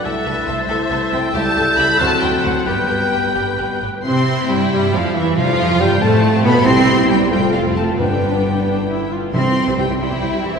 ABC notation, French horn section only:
X:1
M:6/8
L:1/16
Q:3/8=91
K:G
V:1 name="French horn section"
[A,E]6 [A,E]6 | [G,E]6 [F,C]6 | [G,B,]8- [G,B,]2 z2 | [K:C] C4 G,2 G,2 F,2 E,2 |
F,4 G,2 A,4 B,2 | [EG]6 [FA]6 | [DB]8- [DB]2 z2 | z4 [EG] z4 z [EG] z |]